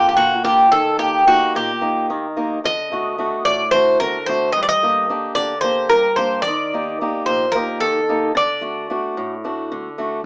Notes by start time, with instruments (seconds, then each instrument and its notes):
Already playing: steel-string acoustic guitar F2 A#3 D4 F4
0.09 bouzouki G4
0.17 steel-string acoustic guitar A#2, bouzouki F#4
0.44 steel-string acoustic guitar A#3 D4 F4, bouzouki G4
0.72 steel-string acoustic guitar D#3, bouzouki A4
0.98 steel-string acoustic guitar A#3 D#4 G4, bouzouki G4
1.27 steel-string acoustic guitar A#3 D#4 G4, bouzouki F#4
1.55 steel-string acoustic guitar A#2, bouzouki G4
1.81 steel-string acoustic guitar A#3 D#4 G4
2.10 steel-string acoustic guitar D#3
2.37 steel-string acoustic guitar A#3 D#4 G4
2.64 steel-string acoustic guitar D3, bouzouki D#5
2.91 steel-string acoustic guitar D3 A3 F#4
3.18 steel-string acoustic guitar A3 D4 F#4
3.45 steel-string acoustic guitar A2, bouzouki D5
3.71 steel-string acoustic guitar A3 D4 F#4, bouzouki C5
4.00 steel-string acoustic guitar D3, bouzouki A#4
4.26 steel-string acoustic guitar A3 D4 F#4, bouzouki C5
4.52 steel-string acoustic guitar G2, bouzouki D#5
4.63 bouzouki D5
4.69 bouzouki D#5
4.83 steel-string acoustic guitar D3 A#3 G4
5.09 steel-string acoustic guitar A#3 D4 G4
5.35 steel-string acoustic guitar D3, bouzouki D5
5.61 steel-string acoustic guitar A#3 D4 G4, bouzouki C5
5.89 steel-string acoustic guitar G2, bouzouki A#4
6.16 steel-string acoustic guitar A#3 D4 G4, bouzouki C5
6.42 bouzouki D5
6.47 steel-string acoustic guitar D#3
6.74 steel-string acoustic guitar A#3 D#4 G4
7.01 steel-string acoustic guitar A#3 D#4 G4
7.26 steel-string acoustic guitar A#2, bouzouki C5
7.52 steel-string acoustic guitar A#3 D#4, bouzouki A#4
7.56 steel-string acoustic guitar G4
7.80 steel-string acoustic guitar D#3, bouzouki A4
8.09 steel-string acoustic guitar A#3 D#4 G4
8.35 steel-string acoustic guitar D3, bouzouki D5
8.61 steel-string acoustic guitar A3 D4 F#4
8.90 steel-string acoustic guitar A3 D4 F#4
9.17 steel-string acoustic guitar A2
9.44 steel-string acoustic guitar A3 D4 F#4
9.72 steel-string acoustic guitar D3
9.98 steel-string acoustic guitar A3 D4 F#4